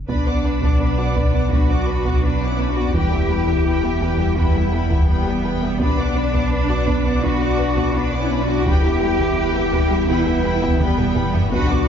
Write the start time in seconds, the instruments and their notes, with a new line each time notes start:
0.08 double bass section B1, sub bass B1, synth arpeggio sound B3, french horn section B3, cello section D4, viola section D4 B4, violin section D5 B5, taiko
0.27 viola section B3 D5, synth arpeggio sound B4, violin section F#5 D6
0.44 synth arpeggio sound D4, viola section D4 B4, violin section D5 B5
0.62 synth arpeggio sound B3, viola section B3 D5, violin section F#5 D6, taiko
0.80 viola section D4 B4, synth arpeggio sound B4, violin section D5 B5
0.98 viola section B3 D5, synth arpeggio sound F#4, violin section F#5 D6
1.16 synth arpeggio sound B3, viola section D4 B4, violin section D5 B5, taiko
1.34 viola section B3 D5, synth arpeggio sound D4, violin section F#5 D6
1.51 synth arpeggio sound B3, french horn section D4, viola section D4 B4, cello section F#4, violin section D5 B5, taiko
1.69 viola section B3 D5, synth arpeggio sound D4, violin section F#5 D6
1.87 viola section D4 B4, synth arpeggio sound B4, violin section D5 B5
2.05 synth arpeggio sound B3, viola section B3 D5, violin section F#5 D6, taiko
2.23 french horn section B3, cello section D4, viola section D4 B4, violin section D5 B5
2.41 viola section B3 D5, synth arpeggio sound D4, violin section F#5 D6
2.47 french horn section C#4, cello section E4
2.59 synth arpeggio sound B3, viola section D4 B4, violin section D5 B5
2.71 french horn section D4, cello section F#4
2.77 viola section B3 D5, synth arpeggio sound F#4, violin section F#5 D6
2.94 sub bass E1, double bass section E2, synth arpeggio sound E3, viola section G3 B4, french horn section E4, cello section G4, violin section G5 B5, taiko
3.12 viola section B3 G4, synth arpeggio sound E4, violin section E5 G5
3.30 synth arpeggio sound G3, viola section G3 B4, violin section G5 B5
3.48 synth arpeggio sound E3, viola section B3 G4, violin section E5 G5, taiko
3.66 viola section G3 B4, synth arpeggio sound E4, violin section G5 B5
3.83 synth arpeggio sound B3, viola section B3 G4, violin section E5 G5
4.01 synth arpeggio sound E3, viola section G3 B4, violin section G5 B5, taiko
4.19 synth arpeggio sound G3, viola section B3 G4, violin section E5 G5
4.37 synth arpeggio sound E3, viola section G3 B4, french horn section B3, cello section E4, violin section G5 B5, taiko
4.55 synth arpeggio sound G3, viola section B3 G4, violin section E5 G5
4.73 viola section G3 B4, synth arpeggio sound E4, violin section G5 B5
4.90 synth arpeggio sound E3, viola section B3 G4, violin section E5 G5, taiko
5.09 french horn section G3, viola section G3 B4, cello section B3, violin section G5 B5
5.26 synth arpeggio sound G3, viola section B3 G4, violin section E5 G5
5.44 synth arpeggio sound E3, viola section G3 B4, violin section G5 B5
5.62 synth arpeggio sound B3, viola section B3 G4, violin section E5 G5
5.79 sub bass B1, double bass section B1, synth arpeggio sound B3, french horn section B3, cello section D4, viola section D4 B4, violin section D5 B5, taiko
5.98 viola section B3 D5, synth arpeggio sound B4, violin section F#5 D6
6.15 synth arpeggio sound D4, viola section D4 B4, violin section D5 B5
6.33 synth arpeggio sound B3, viola section B3 D5, violin section F#5 D6, taiko
6.52 viola section D4 B4, synth arpeggio sound B4, violin section D5 B5
6.69 viola section B3 D5, synth arpeggio sound F#4, violin section F#5 D6
6.87 synth arpeggio sound B3, viola section D4 B4, violin section D5 B5, taiko
7.05 viola section B3 D5, synth arpeggio sound D4, violin section F#5 D6
7.22 synth arpeggio sound B3, viola section D4 B4, french horn section D4, cello section F#4, violin section D5 B5, taiko
7.40 viola section B3 D5, synth arpeggio sound D4, violin section F#5 D6
7.59 viola section D4 B4, synth arpeggio sound B4, violin section D5 B5
7.77 synth arpeggio sound B3, viola section B3 D5, violin section F#5 D6, taiko
7.94 french horn section B3, cello section D4, viola section D4 B4, violin section D5 B5
8.13 viola section B3 D5, synth arpeggio sound D4, violin section F#5 D6
8.19 french horn section C#4, cello section E4
8.30 synth arpeggio sound B3, viola section D4 B4, violin section D5 B5
8.42 french horn section D4, cello section F#4
8.48 viola section B3 D5, synth arpeggio sound F#4, violin section F#5 D6
8.66 sub bass E1, double bass section E2, synth arpeggio sound E3, viola section G3 B4, french horn section E4, cello section G4, violin section G5 B5, taiko
8.84 viola section B3 G4, synth arpeggio sound E4, violin section E5 G5
9.02 synth arpeggio sound G3, viola section G3 B4, violin section G5 B5
9.20 synth arpeggio sound E3, viola section B3 G4, violin section E5 G5, taiko
9.37 viola section G3 B4, synth arpeggio sound E4, violin section G5 B5
9.55 synth arpeggio sound B3, viola section B3 G4, violin section E5 G5
9.73 synth arpeggio sound E3, viola section G3 B4, violin section G5 B5, taiko
9.91 synth arpeggio sound G3, viola section B3 G4, violin section E5 G5
10.09 synth arpeggio sound E3, viola section G3 B4, french horn section B3, cello section E4, violin section G5 B5, taiko
10.26 synth arpeggio sound G3, viola section B3 G4, violin section E5 G5
10.44 viola section G3 B4, synth arpeggio sound E4, violin section G5 B5
10.62 synth arpeggio sound E3, viola section B3 G4, violin section E5 G5, taiko
10.80 viola section G3 B4, french horn section G3, cello section B3, violin section G5 B5, taiko mid
10.98 synth arpeggio sound G3, viola section B3 G4, violin section E5 G5, taiko low-mid
11.16 synth arpeggio sound E3, viola section G3 B4, violin section G5 B5, taiko low-mid
11.33 viola section B3 G4, synth arpeggio sound B3, violin section E5 G5, taiko low
11.51 double bass section B1, sub bass B1, synth arpeggio sound B3, viola section D4 B4, french horn section D4, cello section F#4, violin section F#5 B5, taiko
11.69 viola section B3 F#4, synth arpeggio sound B4, violin section D5 D6